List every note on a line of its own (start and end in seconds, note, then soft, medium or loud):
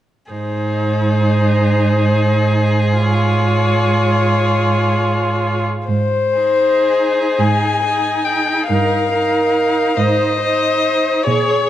0.32 5.62 G#2 soft
0.32 2.97 D#4 soft
0.32 5.61 G#4 soft
0.32 3.02 C5 soft
3.00 5.62 F4 soft
3.00 5.65 C#5 soft
5.88 7.21 G#2 soft
5.88 7.41 C5 soft
6.38 7.81 D#4 soft
6.38 7.80 G#4 soft
7.39 8.52 G#2 soft
7.39 8.26 G#5 soft
7.85 8.68 D#4 soft
7.85 8.68 G#4 soft
8.24 8.67 G5 soft
8.68 9.80 G2 soft
8.68 9.12 D#4 soft
8.68 9.11 A#4 soft
8.68 9.99 F5 soft
9.13 9.96 D#4 soft
9.13 9.95 A#4 soft
9.97 11.09 G#2 soft
9.97 10.40 D#4 soft
9.97 10.40 C5 soft
9.97 11.25 D#5 soft
10.41 11.24 D#4 soft
10.41 11.25 C5 soft
11.24 11.70 A#2 soft
11.24 11.70 G#4 soft
11.24 11.70 C#5 soft